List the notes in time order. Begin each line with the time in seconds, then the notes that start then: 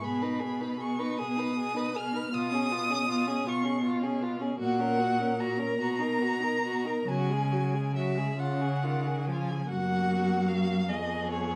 0.02 B2 B3 G#4 B5
0.22 D#4 B4
0.39 B3 G#4
0.61 D#4 B4
0.80 B3 G#4 C#6
0.99 D#4 B4
1.18 B2 B3 G#4 D#6
1.37 D#4 B4
1.56 B3 G#4
1.74 D#4 B4
1.93 B3 G#4 F6
2.13 D#4 B4
2.32 B2 B3 F4 D#6
2.51 C#4 G#4
2.70 B3 F4
2.89 C#4 G#4
3.08 B3 F4
3.26 C#4 G#4
3.45 B2 B3 F4 C#6
3.63 C#4 G#4
3.82 B3 F4
4.00 C#4 G#4
4.20 B3 F4
4.39 C#4 G#4
4.59 A#2 A#3 F#4 F#5
4.79 C#4 A#4
4.98 A#3 F#4
5.19 C#4 A#4
5.38 A#3 F#4 A#5
5.57 C#4 A#4
5.78 B2 B3 F#4
5.99 D#4 A#4
6.19 B3 F#4
6.40 D#4 A#4
6.62 B3 F#4
6.85 D#4 A#4
7.07 C#3 F#3 F#4 G#5
7.29 G#3 G#4
7.52 F#3 F#4
7.73 G#3 G#4
7.95 F#3 F#4 E5
8.17 G#3 G#4
8.38 C#3 F4 F#5
8.61 G#4
8.84 D#3 F4
9.07 G#4
9.25 F3 G#5
9.30 F4
9.50 G#4
9.67 F#2 A#3 F#4 F#5
10.48 F5
10.88 F2 B3 G#4 D#5
11.31 C#5